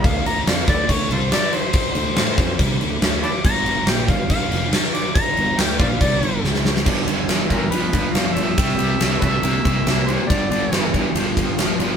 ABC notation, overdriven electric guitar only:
X:1
M:4/4
L:1/8
Q:1/4=140
K:Ddor
V:1 name="Overdriven electric guitar" clef=bass
z8 | z8 | z8 | z8 |
[G,,D,] [G,,D,] [G,,E,] [G,,E,] [G,,F,] [G,,F,] [G,,F,] [G,,F,] | [C,G,] [C,G,] [C,A,] [C,A,] [C,_B,] [C,B,] [C,B,] [C,B,] | [G,,D,] [G,,D,] [G,,E,] [G,,E,] [G,,F,] [G,,F,] [G,,F,] [G,,F,] |]